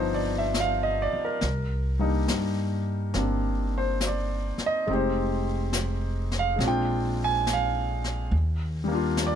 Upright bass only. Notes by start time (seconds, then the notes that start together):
Already playing: G1
1.13 muted upright bass stroke
1.42 C2
2.29 G2
3.15 G1
4.58 muted upright bass stroke
4.88 F1
6.59 A#1
8.31 D#2